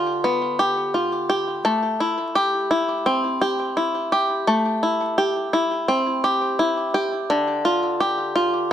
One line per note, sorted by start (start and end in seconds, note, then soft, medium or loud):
0.00 1.64 D3 medium
0.00 0.23 B3 medium
0.00 0.93 F4 medium
0.00 0.59 G4 medium
0.24 1.72 B3 medium
0.59 1.30 G4 medium
0.94 1.72 F4 medium
1.30 2.35 G4 medium
1.65 4.46 A3 medium
2.00 2.70 E4 medium
2.35 3.41 G4 medium
2.71 3.76 E4 medium
3.06 5.87 C4 medium
3.41 4.12 G4 medium
3.77 4.82 E4 medium
4.12 5.18 G4 medium
4.47 7.29 A3 medium
4.83 5.52 E4 medium
5.18 6.24 G4 medium
5.53 6.58 E4 medium
5.88 7.37 C4 medium
6.24 6.94 G4 medium
6.59 7.37 E4 medium
6.94 7.68 G4 medium
7.30 8.73 D3 medium
7.65 8.34 F4 medium
8.00 8.73 G4 medium
8.36 8.73 F4 medium